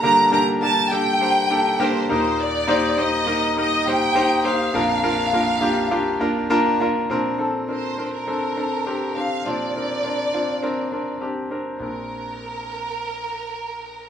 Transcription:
X:1
M:4/4
L:1/16
Q:"Swing 16ths" 1/4=102
K:Bb
V:1 name="Violin section"
b2 b2 a2 g6 c2 c2 | d4 e4 e2 g4 f2- | f12 z4 | z4 c3 B6- B f2 |
d12 z4 | B16 |]
V:2 name="Grand piano"
[B,DGB]2 [B,DGB]2 [B,DGB]2 [B,DGA]2 [B,DGc]2 [B,DGA]2 [B,DGB]2 [B,EGB]2- | [B,EGB]2 [B,EGc]2 [B,EGc]2 [B,EGB]2 [B,EGB]2 [B,EGc]2 [B,EGc]2 [B,EGc]2 | [B,DFB]2 [B,DFB]2 [B,DFB]2 [B,DFG]2 [B,DFG]2 [B,DFB]2 [B,DFB]2 [B,DFB]2 | [CDB]2 [CDA]2 [CDB]2 [CDB]2 [CDA]2 [CDA]2 [CDG]2 [CDG]2 |
[CDF]2 [CDB]2 [CDB]2 [CDF]2 [CDB]2 [CDB]2 [CDG]2 [CDB]2 | [CDB]16 |]
V:3 name="Grand piano" clef=bass
[G,,D,]12- [G,,D,]2 [E,,B,,]2- | [E,,B,,]12- [E,,B,,]2 z2 | [B,,,F,,]16 | [B,,F,]16 |
[B,,F,]16 | B,,,16 |]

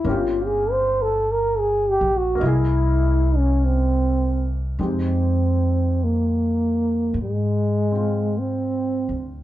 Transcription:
X:1
M:4/4
L:1/16
Q:"Swing" 1/4=51
K:Fm
V:1 name="Trombone"
F A c =A B _A G _G =E3 D C3 z | C4 B,4 A,4 C3 z |]
V:2 name="Grand piano"
[B,DFG]8 [B,=E^G^d]8 | [A,CEG]8- [A,CEG]2 [CF]6 |]
V:3 name="Upright bass" clef=bass
G,,,6 B,,,2 C,,8 | F,,8 A,,6 =D,,2 |]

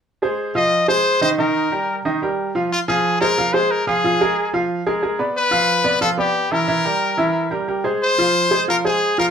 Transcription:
X:1
M:4/4
L:1/8
Q:1/4=181
K:Fm
V:1 name="Trumpet"
z3 e2 c2 c | B4 z4 | F A2 B2 c B A- | A3 z4 z |
=B4 =A G2 _B- | B4- B z3 | c4 B A2 B |]
V:2 name="Upright piano"
z [A,Ac]2 [F,Ff]2 [A,Ac]2 [E,Ee] | [E,Ee]2 [G,GB]2 [E,Ee] [G,GB]2 [F,Ff] | z [F,Ff]2 [A,Ac] [F,Ff] [A,Ac]2 [F,Ff] | [F,Ff] [A,AB]2 [F,Ff]2 [A,AB] [A,AB] [=B,=B=d]- |
[=B,=B=d] [F,Ff]2 [B,Bd] [F,Ff] [B,Bd]2 [=E,=E=e] | [=E,=E=e] [G,GB]2 [E,Ee]2 [G,GB] [G,GB] [A,Ac]- | [A,Ac] [F,Ff]2 [A,Ac] [F,Ff] [A,Ac]2 [F,Ff] |]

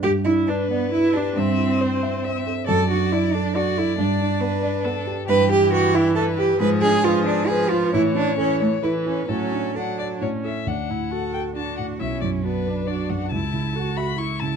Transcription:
X:1
M:3/4
L:1/8
Q:1/4=136
K:G
V:1 name="Violin"
z2 B4 | e2 c2 e2 | d4 d2- | d2 B2 A2 |
[K:D] G4 B2 | ^G4 B2 | c4 B2 | A2 f d c e |
f3 g a f | e d B2 d f | a3 b c' a |]
V:2 name="Grand piano"
G,, D B d B G | G,, E c e c A | F,, D d A d A | G,, D B d B G |
[K:D] G,, E B e B G | ^G,, D B d B ^E | A,, C A c A E | A,, D A d A,, [EA] |
D,, A,, F A D A,, | B,,, F,, F B D F,, | C,, C, A e E C, |]
V:3 name="Cello"
G E D B, E D | C4- C z | A F E D F E | D4- D z |
[K:D] B G F E A G | B ^G ^E D G E | E D C A, E C | C2 D2 z2 |
z2 A2 F2 | E2 D2 F2 | E2 F2 E2 |]
V:4 name="Viola"
G E D B, E D | C4- C z | z2 D2 D2 | z2 B,2 B,2 |
[K:D] E,6 | ^E,2 E,2 E,2 | E,2 E,2 E,2 | F,2 F,2 C z |
D E F2 D2 | C2 B, D3 | E2 F2 E2 |]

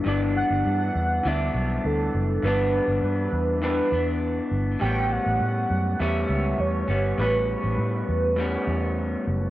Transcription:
X:1
M:4/4
L:1/16
Q:1/4=101
K:Glyd
V:1 name="Soft synth lead"
d2 f6 e4 A4 | B4 B4 B6 z2 | g2 f6 e4 c4 | B12- B2 z2 |]
V:2 name="Clean electric guitar"
[G,,E,B,D]8 [G,,E,B,D]8 | [G,,E,B,D]8 [G,,E,B,D]2 [E,B,D]6 | [A,,G,B,C]8 [A,,G,B,C]6 [G,B,C]2 | [A,,G,B,C]8 [A,,G,B,C]8 |]
V:3 name="Fingered electric bass" clef=bass
G,,,3 G,,, G,,2 E,,2 D,,2 B,,,2 D,,2 F,,,2 | G,,,3 G,,, G,,2 E,,4 E,,4 G,,,2 | A,,,3 A,,, A,,2 F,,2 E,,2 C,,2 E,,2 G,,,2 | A,,,3 A,,, A,,2 E,,4 E,,4 F,,,2 |]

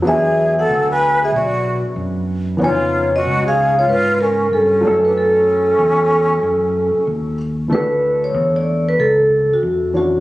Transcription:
X:1
M:4/4
L:1/16
Q:"Swing 16ths" 1/4=94
K:D
V:1 name="Vibraphone"
e3 f2 ^g2 e d3 z4 z | c3 _e2 ^e2 c B2 _B2 A3 =B | A12 z4 | B3 c2 d2 B A3 F3 F2 |]
V:2 name="Flute"
^G3 A2 B2 G F3 z4 z | ^E3 F2 ^G2 E E2 C2 C3 D | C12 z4 | z16 |]
V:3 name="Upright piano"
[F,B,DE^g]16 | [C,E,B,C_E^g]12- [C,=E,B,C_Eg]2 [F,A,C=EA]2- | [F,A,CEA]12- [F,A,CEA]2 z2 | [E,A,DEFA]12- [E,A,DEFA]2 [E,CDEF]2 |]
V:4 name="Fingered electric bass" clef=bass
E,,4 D,,4 B,,,3 z F,,4 | ^E,,4 C,,4 ^G,,4 =G,,2 F,,2- | F,,4 E,,4 F,,3 z _E,,4 | D,,4 E,,4 C,,3 z =F,,4 |]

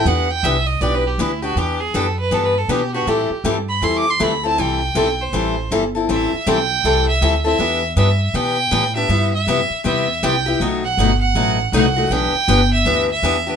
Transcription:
X:1
M:4/4
L:1/16
Q:"Swing" 1/4=159
K:Em
V:1 name="Violin"
f2 g2 e2 ^d2 (3=d2 B2 G2 E2 F2 | G2 ^G2 A2 B2 (3A2 B2 A2 =G2 F2 | G4 z2 b2 (3c'2 d'2 c'2 b2 a2 | g6 c6 z4 |
e4 g6 e4 e2- | e4 e4 g6 e2- | e2 e6 e4 g4 | z2 f4 f6 f4 |
g6 e4 e6 |]
V:2 name="Steel-string acoustic guitar"
[E,B,DG]2 z2 [E,B,DG] z3 [E,B,DG]2 z2 [E,B,DG] z [B,DG]2 | [E,B,DG]2 z2 [E,B,DG] z3 [E,B,DG]2 z2 [E,B,DG] z [B,DG]2 | [E,G,CEA]2 z2 [E,G,CEA] z3 [E,G,CEA]2 z2 [E,G,CEA] z [CEA]2 | [E,G,CEA]2 z2 [E,G,CEA] z3 [E,G,CEA]2 z2 [E,G,CEA] z [CEA]2 |
[E,G,CEA]2 z2 [E,G,CEA] z3 [E,G,CEA]2 z2 [E,G,CEA] z [CEA]2 | [E,B,DG]2 z2 [E,B,DG] z3 [E,B,DG]2 z2 [E,B,DG] z [B,DG]2 | [C,G,B,EG]2 z2 [C,G,B,EG] z3 [C,G,B,EG]2 z2 [C,G,B,EG] z [B,EG]2 | [B,,F,A,^DF]2 z2 [B,,F,A,DF] z3 [B,,F,A,DF]2 z2 [B,,F,A,DF] z [A,DF]2 |
[E,B,DG]2 z2 [E,B,DG] z3 [E,B,DG]2 z2 [E,B,DG] z [B,DG]2 |]
V:3 name="Upright bass" clef=bass
E,,4 C,,4 B,,,4 D,,4 | E,,4 F,,4 G,,4 B,,4 | A,,2 z2 G,,4 E,,4 D,,4 | C,,4 B,,,4 A,,,4 G,,,4 |
A,,,2 z2 B,,,4 C,,4 D,,4 | E,,4 G,,4 B,,4 A,,4 | G,,4 F,,2 z2 E,,4 C,,4 | B,,,4 G,,,4 A,,,4 C,,4 |
B,,,2 z2 G,,,4 D,,4 E,,4 |]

